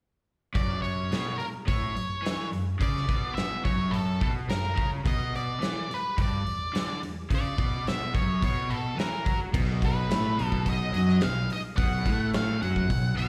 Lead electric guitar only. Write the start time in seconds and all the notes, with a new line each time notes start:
0.56 D5
0.82 C#5
1.38 A#4
1.68 C#5
2.82 D5
3.35 E5
3.65 C#5
3.91 A4
4.22 A4
4.50 A#4
5.07 D#5
5.36 D5
5.94 B4
6.22 D5
7.35 D5
7.88 E5
8.15 C#5
8.45 C#5
8.70 A4
9.00 A#4
9.85 B4
10.46 A4
10.70 D#5
11.23 F5
11.53 D#5
11.77 F#5
12.36 F5
12.62 F#5
13.17 F5